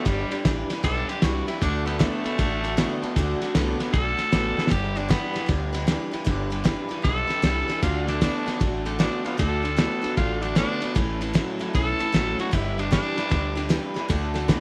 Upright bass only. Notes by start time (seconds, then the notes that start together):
0.06 G1
0.31 muted upright bass stroke
0.45 A1
0.69 muted upright bass stroke
0.84 B1
1.23 C2
1.62 D2
2.25 muted upright bass stroke
2.39 A1
3.02 muted upright bass stroke
3.17 D2
3.42 muted upright bass stroke
3.55 C2
3.94 B1
4.33 A1
4.58 muted upright bass stroke
4.71 G1
5.35 muted upright bass stroke
5.49 D2
6.13 muted upright bass stroke
6.27 G1
6.91 muted upright bass stroke
7.05 B1
7.43 C2
7.83 D2
8.47 muted upright bass stroke
8.61 A1
9.24 muted upright bass stroke
9.39 D2
10.04 muted upright bass stroke
10.17 A1
10.82 muted upright bass stroke
10.96 A1
11.61 muted upright bass stroke
11.75 B1
12.14 A1
12.53 G1
13.18 muted upright bass stroke
13.31 D2
13.96 muted upright bass stroke
14.10 D2